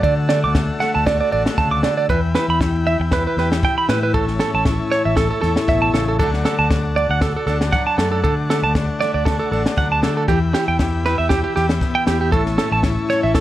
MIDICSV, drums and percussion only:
0, 0, Header, 1, 2, 480
1, 0, Start_track
1, 0, Key_signature, 2, "major"
1, 0, Tempo, 511945
1, 35, Time_signature, 4, 2, 24, 8
1, 12569, End_track
2, 0, Start_track
2, 0, Title_t, "Drums"
2, 32, Note_on_c, 9, 36, 97
2, 126, Note_off_c, 9, 36, 0
2, 272, Note_on_c, 9, 38, 76
2, 366, Note_off_c, 9, 38, 0
2, 513, Note_on_c, 9, 38, 72
2, 515, Note_on_c, 9, 36, 95
2, 607, Note_off_c, 9, 38, 0
2, 609, Note_off_c, 9, 36, 0
2, 761, Note_on_c, 9, 38, 32
2, 854, Note_off_c, 9, 38, 0
2, 1002, Note_on_c, 9, 36, 93
2, 1002, Note_on_c, 9, 38, 79
2, 1095, Note_off_c, 9, 36, 0
2, 1096, Note_off_c, 9, 38, 0
2, 1369, Note_on_c, 9, 38, 81
2, 1463, Note_off_c, 9, 38, 0
2, 1479, Note_on_c, 9, 38, 28
2, 1480, Note_on_c, 9, 36, 98
2, 1573, Note_off_c, 9, 38, 0
2, 1574, Note_off_c, 9, 36, 0
2, 1716, Note_on_c, 9, 38, 75
2, 1810, Note_off_c, 9, 38, 0
2, 1962, Note_on_c, 9, 36, 92
2, 2056, Note_off_c, 9, 36, 0
2, 2201, Note_on_c, 9, 38, 74
2, 2294, Note_off_c, 9, 38, 0
2, 2443, Note_on_c, 9, 36, 98
2, 2445, Note_on_c, 9, 38, 74
2, 2537, Note_off_c, 9, 36, 0
2, 2538, Note_off_c, 9, 38, 0
2, 2920, Note_on_c, 9, 38, 76
2, 2924, Note_on_c, 9, 36, 95
2, 3014, Note_off_c, 9, 38, 0
2, 3018, Note_off_c, 9, 36, 0
2, 3171, Note_on_c, 9, 38, 28
2, 3265, Note_off_c, 9, 38, 0
2, 3298, Note_on_c, 9, 38, 79
2, 3392, Note_off_c, 9, 38, 0
2, 3403, Note_on_c, 9, 38, 27
2, 3405, Note_on_c, 9, 36, 94
2, 3497, Note_off_c, 9, 38, 0
2, 3498, Note_off_c, 9, 36, 0
2, 3645, Note_on_c, 9, 38, 82
2, 3739, Note_off_c, 9, 38, 0
2, 3884, Note_on_c, 9, 36, 86
2, 3978, Note_off_c, 9, 36, 0
2, 4011, Note_on_c, 9, 38, 27
2, 4105, Note_off_c, 9, 38, 0
2, 4121, Note_on_c, 9, 38, 70
2, 4214, Note_off_c, 9, 38, 0
2, 4362, Note_on_c, 9, 38, 71
2, 4365, Note_on_c, 9, 36, 95
2, 4456, Note_off_c, 9, 38, 0
2, 4459, Note_off_c, 9, 36, 0
2, 4606, Note_on_c, 9, 38, 30
2, 4699, Note_off_c, 9, 38, 0
2, 4843, Note_on_c, 9, 38, 74
2, 4846, Note_on_c, 9, 36, 96
2, 4936, Note_off_c, 9, 38, 0
2, 4939, Note_off_c, 9, 36, 0
2, 5086, Note_on_c, 9, 38, 27
2, 5180, Note_off_c, 9, 38, 0
2, 5215, Note_on_c, 9, 38, 74
2, 5309, Note_off_c, 9, 38, 0
2, 5322, Note_on_c, 9, 38, 28
2, 5327, Note_on_c, 9, 36, 89
2, 5416, Note_off_c, 9, 38, 0
2, 5421, Note_off_c, 9, 36, 0
2, 5573, Note_on_c, 9, 38, 79
2, 5666, Note_off_c, 9, 38, 0
2, 5809, Note_on_c, 9, 36, 94
2, 5902, Note_off_c, 9, 36, 0
2, 5941, Note_on_c, 9, 38, 28
2, 6034, Note_off_c, 9, 38, 0
2, 6048, Note_on_c, 9, 38, 77
2, 6141, Note_off_c, 9, 38, 0
2, 6286, Note_on_c, 9, 38, 72
2, 6287, Note_on_c, 9, 36, 93
2, 6380, Note_off_c, 9, 38, 0
2, 6381, Note_off_c, 9, 36, 0
2, 6762, Note_on_c, 9, 38, 75
2, 6766, Note_on_c, 9, 36, 96
2, 6856, Note_off_c, 9, 38, 0
2, 6860, Note_off_c, 9, 36, 0
2, 7000, Note_on_c, 9, 38, 27
2, 7094, Note_off_c, 9, 38, 0
2, 7134, Note_on_c, 9, 38, 73
2, 7228, Note_off_c, 9, 38, 0
2, 7240, Note_on_c, 9, 38, 28
2, 7245, Note_on_c, 9, 36, 93
2, 7334, Note_off_c, 9, 38, 0
2, 7339, Note_off_c, 9, 36, 0
2, 7487, Note_on_c, 9, 38, 76
2, 7581, Note_off_c, 9, 38, 0
2, 7726, Note_on_c, 9, 36, 92
2, 7820, Note_off_c, 9, 36, 0
2, 7972, Note_on_c, 9, 38, 72
2, 8065, Note_off_c, 9, 38, 0
2, 8205, Note_on_c, 9, 38, 75
2, 8206, Note_on_c, 9, 36, 88
2, 8299, Note_off_c, 9, 38, 0
2, 8300, Note_off_c, 9, 36, 0
2, 8448, Note_on_c, 9, 38, 30
2, 8541, Note_off_c, 9, 38, 0
2, 8685, Note_on_c, 9, 36, 107
2, 8689, Note_on_c, 9, 38, 79
2, 8779, Note_off_c, 9, 36, 0
2, 8783, Note_off_c, 9, 38, 0
2, 9056, Note_on_c, 9, 38, 79
2, 9150, Note_off_c, 9, 38, 0
2, 9164, Note_on_c, 9, 36, 94
2, 9171, Note_on_c, 9, 38, 26
2, 9258, Note_off_c, 9, 36, 0
2, 9264, Note_off_c, 9, 38, 0
2, 9403, Note_on_c, 9, 38, 80
2, 9496, Note_off_c, 9, 38, 0
2, 9640, Note_on_c, 9, 36, 96
2, 9734, Note_off_c, 9, 36, 0
2, 9883, Note_on_c, 9, 38, 75
2, 9977, Note_off_c, 9, 38, 0
2, 10120, Note_on_c, 9, 36, 87
2, 10120, Note_on_c, 9, 38, 73
2, 10213, Note_off_c, 9, 36, 0
2, 10213, Note_off_c, 9, 38, 0
2, 10359, Note_on_c, 9, 38, 31
2, 10453, Note_off_c, 9, 38, 0
2, 10596, Note_on_c, 9, 38, 79
2, 10598, Note_on_c, 9, 36, 103
2, 10689, Note_off_c, 9, 38, 0
2, 10692, Note_off_c, 9, 36, 0
2, 10841, Note_on_c, 9, 38, 29
2, 10935, Note_off_c, 9, 38, 0
2, 10964, Note_on_c, 9, 38, 85
2, 11058, Note_off_c, 9, 38, 0
2, 11076, Note_on_c, 9, 36, 91
2, 11077, Note_on_c, 9, 38, 29
2, 11170, Note_off_c, 9, 36, 0
2, 11170, Note_off_c, 9, 38, 0
2, 11314, Note_on_c, 9, 38, 75
2, 11408, Note_off_c, 9, 38, 0
2, 11555, Note_on_c, 9, 36, 92
2, 11649, Note_off_c, 9, 36, 0
2, 11683, Note_on_c, 9, 38, 26
2, 11777, Note_off_c, 9, 38, 0
2, 11795, Note_on_c, 9, 38, 77
2, 11889, Note_off_c, 9, 38, 0
2, 12031, Note_on_c, 9, 38, 77
2, 12036, Note_on_c, 9, 36, 95
2, 12125, Note_off_c, 9, 38, 0
2, 12130, Note_off_c, 9, 36, 0
2, 12275, Note_on_c, 9, 38, 29
2, 12369, Note_off_c, 9, 38, 0
2, 12512, Note_on_c, 9, 38, 78
2, 12515, Note_on_c, 9, 36, 95
2, 12569, Note_off_c, 9, 36, 0
2, 12569, Note_off_c, 9, 38, 0
2, 12569, End_track
0, 0, End_of_file